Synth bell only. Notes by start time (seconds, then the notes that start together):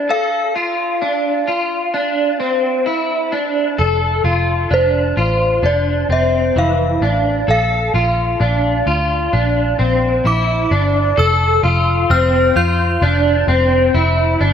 Already playing: D5
0.10 F5
4.74 C5
5.66 D5
6.12 E5
6.58 F5
7.51 F5
10.27 D6
11.19 E6
12.11 F6
12.57 G6